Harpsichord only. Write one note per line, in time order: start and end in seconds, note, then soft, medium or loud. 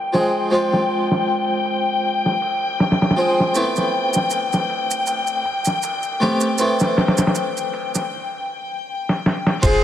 0.13 0.47 F3 medium
0.13 0.47 G#3 medium
0.13 0.47 C4 medium
0.13 0.48 G#4 medium
0.50 2.37 F3 medium
0.50 2.37 G#3 medium
0.50 2.38 C4 medium
0.50 2.38 F4 medium
3.17 3.51 F3 medium
3.17 3.51 G#3 medium
3.17 3.51 C4 medium
3.17 3.52 G#4 medium
3.54 5.40 A3 medium
3.54 5.41 B3 medium
3.54 5.41 C4 medium
3.54 5.42 E4 medium
6.20 6.55 A3 medium
6.20 6.55 B3 medium
6.20 6.55 C4 medium
6.20 6.55 G4 medium
6.58 8.10 A3 medium
6.58 8.11 B3 medium
6.58 8.11 C4 medium
6.58 8.12 E4 medium
9.62 9.84 C4 medium
9.62 9.84 F4 medium
9.62 9.84 G#4 medium
9.62 9.84 C5 medium